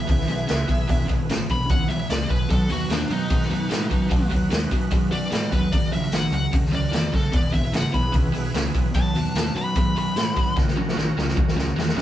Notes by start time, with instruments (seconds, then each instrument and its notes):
Already playing: tonewheel organ B3 E4 G#4 B4, lead electric guitar E5
0.08 fingered electric bass C#2, overdriven electric guitar E2 B2, kick, open hi-hat
0.21 snare
0.28 fingered electric bass B1, overdriven electric guitar E2 B2, open hi-hat
0.48 fingered electric bass C#2, overdriven electric guitar E2 C#3, snare, open hi-hat
0.68 fingered electric bass B1, overdriven electric guitar E2 B2, kick, open hi-hat
0.88 fingered electric bass E1, overdriven electric guitar E2 B2, kick, open hi-hat
1.09 fingered electric bass G#1, overdriven electric guitar E2 B2, kick, open hi-hat
1.29 fingered electric bass G#1, overdriven electric guitar E2 C#3, snare, open hi-hat
1.50 fingered electric bass B1, overdriven electric guitar E2 B2, lead electric guitar B5, kick, open hi-hat
1.69 fingered electric bass C#2, overdriven electric guitar E2 B2, lead electric guitar F#5, kick, open hi-hat
1.88 fingered electric bass B1, overdriven electric guitar E2 B2, lead electric guitar E5, open hi-hat
2.09 fingered electric bass C#2, overdriven electric guitar E2 C#3, lead electric guitar D5, snare, open hi-hat
2.29 fingered electric bass B1, overdriven electric guitar E2 B2, lead electric guitar B4, kick, open hi-hat
2.49 fingered electric bass B1, overdriven electric guitar B2 F#3, tonewheel organ B3 D#4 F#4 B4, lead electric guitar A4, kick, open hi-hat
2.69 fingered electric bass D#2, overdriven electric guitar B2 F#3, lead electric guitar F#4, open hi-hat
2.89 fingered electric bass D#2, overdriven electric guitar B2 G#3, lead electric guitar D4, snare, open hi-hat
3.10 fingered electric bass F#2, overdriven electric guitar B2 F#3, lead electric guitar D#4, open hi-hat
3.30 fingered electric bass G#2, overdriven electric guitar B2 F#3, kick, open hi-hat
3.42 snare
3.51 fingered electric bass F#2, overdriven electric guitar B2 F#3, open hi-hat
3.70 fingered electric bass A2, overdriven electric guitar B2 G#3, snare, open hi-hat
3.91 fingered electric bass F#2, overdriven electric guitar B2 F#3, kick, open hi-hat
4.10 fingered electric bass B1, overdriven electric guitar B2 F#3, kick, open hi-hat
4.30 fingered electric bass D#2, overdriven electric guitar B2 F#3, kick, open hi-hat
4.50 fingered electric bass D#2, overdriven electric guitar B2 G#3, snare, open hi-hat
4.71 fingered electric bass F#2, overdriven electric guitar B2 F#3, kick, open hi-hat
4.91 fingered electric bass G#2, overdriven electric guitar B2 F#3, kick, open hi-hat
5.11 fingered electric bass F#2, overdriven electric guitar B2 F#3, lead electric guitar D5, open hi-hat
5.31 fingered electric bass A2, overdriven electric guitar B2 G#3, snare, open hi-hat
5.52 fingered electric bass E1, overdriven electric guitar B2 F#3, lead electric guitar B4, kick, open hi-hat
5.72 fingered electric bass F#1, overdriven electric guitar F#2 C#3, tonewheel organ C#3 A#3 F#4 A#4, lead electric guitar D5, kick, open hi-hat
5.92 fingered electric bass A#1, overdriven electric guitar F#2 C#3, lead electric guitar E5, open hi-hat
6.12 fingered electric bass A#1, overdriven electric guitar F#2 D#3, lead electric guitar F#5, snare, open hi-hat
6.32 fingered electric bass C#2, overdriven electric guitar F#2 C#3, lead electric guitar F#5, open hi-hat
6.52 fingered electric bass D#2, overdriven electric guitar F#2 C#3, kick, open hi-hat
6.66 snare
6.71 fingered electric bass C#2, overdriven electric guitar F#2 C#3, lead electric guitar D5, open hi-hat
6.91 fingered electric bass E2, overdriven electric guitar F#2 D#3, snare, open hi-hat
7.12 fingered electric bass F#1, overdriven electric guitar F#2 C#3, lead electric guitar A4, kick, snare, open hi-hat
7.31 fingered electric bass E1, overdriven electric guitar E2 B2, tonewheel organ B3 E4 G#4 B4, kick, open hi-hat
7.36 lead electric guitar D5
7.53 fingered electric bass G#1, overdriven electric guitar E2 B2, lead electric guitar E5, kick, open hi-hat
7.72 fingered electric bass G#1, overdriven electric guitar E2 C#3, lead electric guitar F#5, snare, open hi-hat
7.92 fingered electric bass B1, overdriven electric guitar E2 B2, lead electric guitar B5, kick, open hi-hat
8.12 fingered electric bass C#2, overdriven electric guitar E2 B2, kick, open hi-hat
8.32 fingered electric bass B1, overdriven electric guitar E2 B2, open hi-hat
8.53 fingered electric bass C#2, overdriven electric guitar E2 C#3, snare, open hi-hat
8.74 fingered electric bass B1, overdriven electric guitar E2 B2, kick, open hi-hat
8.94 fingered electric bass B1, overdriven electric guitar B2 F#3, tonewheel organ B3 D#4 F#4 B4, lead electric guitar A5, kick, open hi-hat
9.14 fingered electric bass D#2, overdriven electric guitar B2 F#3, open hi-hat
9.34 fingered electric bass D#2, overdriven electric guitar B2 G#3, snare, open hi-hat
9.55 fingered electric bass F#2, overdriven electric guitar B2 F#3, lead electric guitar B5, open hi-hat
9.76 fingered electric bass G#2, overdriven electric guitar B2 F#3, lead electric guitar B5, kick, open hi-hat
9.95 fingered electric bass F#2, overdriven electric guitar B2 F#3, lead electric guitar B5, open hi-hat
10.16 fingered electric bass A2, overdriven electric guitar B2 G#3, snare, open hi-hat
10.36 fingered electric bass G#1, overdriven electric guitar B2 F#3, kick, open hi-hat
10.56 fingered electric bass F#1, overdriven electric guitar F#2 C#3, tonewheel organ A#3 C#4 F#4 A#4, kick, snare
10.68 snare
10.76 fingered electric bass A#1, overdriven electric guitar F#2 C#3
10.89 snare
10.96 fingered electric bass A#1, overdriven electric guitar F#2 D#3, snare
11.17 fingered electric bass C#2, overdriven electric guitar F#2 C#3, snare
11.29 snare
11.36 fingered electric bass D#2, overdriven electric guitar F#2 C#3, kick
11.48 snare
11.56 fingered electric bass C#2, overdriven electric guitar F#2 C#3, snare
11.76 fingered electric bass E2, overdriven electric guitar F#2 D#3, snare
11.89 snare
11.96 fingered electric bass A#1, overdriven electric guitar F#2 C#3, snare